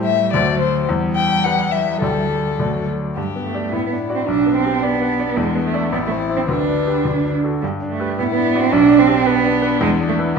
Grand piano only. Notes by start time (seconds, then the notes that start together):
Already playing: A2 A3 G4 C5
0.34 D2 A3 F#4 C5
0.89 E2
1.45 G3 G4 B4
2.02 D2 G3 G4 D5
2.60 D2 A3 F#4 D5
3.17 G2
3.36 B3
3.54 G4 D5
3.72 A2
3.92 D4
4.09 F#4 D5
4.28 B1
4.46 B3
4.65 G4
4.83 D5
5.01 B3
5.20 D5
5.37 E2
5.55 B3
5.73 E4 D5
5.92 A1
6.11 C4
6.29 E4 C5
6.48 D2
6.68 D4
6.87 G4 B4
7.05 D2
7.25 D4
7.44 F#4 A4
7.64 G2
7.82 D4
8.00 G4 B4
8.19 A2
8.37 D4
8.55 F#4 D5
8.73 B1
8.90 D4
9.08 G4
9.26 B4
9.45 D4
9.62 B4
9.81 E2
10.00 D4
10.19 E4 B4